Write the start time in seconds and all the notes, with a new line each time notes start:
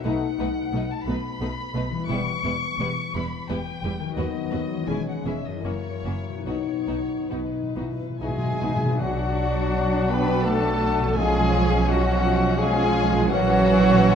Already playing: B2 F#3 A3 D#4
0.00 B2 B4
0.04 B1 A3 B3 D#4 F#5
0.38 B1 B2 A3 B3 D#4 B4
0.72 B1 B2 A3 B3 D#4 B4
0.91 A5
1.06 B1 B2 A3 B3 D#4 B4 B5
1.40 B1 B2 A3 B3 D#4 B4
1.74 B1 B2 A3 B3 D#4 B4
1.90 E3
1.95 G3
1.99 E4
2.04 B4
2.08 E1 E2 G3 B3 E4 B4 C#6
2.43 E1 E2 G3 B3 E4 B4
2.78 E1 E2 G3 B3 E4 B4
3.14 E1 E2 G3 B3 E4 B4 B5
3.49 E1 E2 G3 B3 E4 B4 G5
3.83 E1 E2 G3 B3 E4 B4
3.99 D#3
4.04 F#3
4.09 F#4
4.13 D#2 B3 B4
4.17 D#2 F#3 B3 F#4 B4 D#5
4.50 D#2 F#3 B3 F#4 B4
4.70 E3
4.75 G#3
4.79 E4
4.84 C#4 C#5
4.88 E1 E2 G#3 C#4 E4 G#4 G#5
5.09 F#5
5.25 E1 E2 G#3 C#4 E4 G#4 E5
5.47 F#2 D#5
5.51 F#3
5.56 E4
5.60 F#1 A#3 C#4 E4 F#4 A#4
5.66 F#2 C#5
6.04 F#1 F#2 A#3 C#4 E4 F#4
6.29 B2
6.33 F#3
6.38 D#4
6.42 B3 D#4 B4
6.46 B1 B2 B3 D#4 F#4 C#5
6.56 B2
6.65 B2
6.74 B2
6.82 B2
6.88 B1 B2 B3 D#4 F#4
7.00 B2
7.08 B2
7.17 B2
7.26 B2
7.30 B1 B2 B3 D#4 F#4 B4
7.34 B2
7.44 B2
7.52 B2
7.62 B2
7.72 B2
7.76 B1 B2 B3 D#4 E4 F#4
7.81 B2
7.92 B2
8.01 B2
8.10 B2
8.19 B1 B2 G#3 B3 D#4 F#4 G#4 E5 G#5
8.28 B2
8.37 B2
8.44 B2
8.53 B2
8.60 B1 B2 B3 D#4 F#4
8.69 B2
8.76 B2
8.83 B2
8.87 F#3
8.92 D4
8.96 B1 B2 B4
9.00 F#3 D4 F#4 D5 F#5
10.09 B3 B4 G5 B5
10.44 A3 A4 F#5 A5
11.00 B2
11.04 F3
11.09 C#4
11.13 B2 F3 G#4
11.17 F3 G#3 C#4 G#4 F5 G#5
11.89 F#3 F#4 D#5 F#5
12.58 F3 G#3 C#4 G#4 F5 G#5
13.12 A#2
13.17 F#3
13.21 E4
13.26 A#1 E3 F#3 C#4 F#4 C#5 F#5
13.30 F#3 F#4 C#5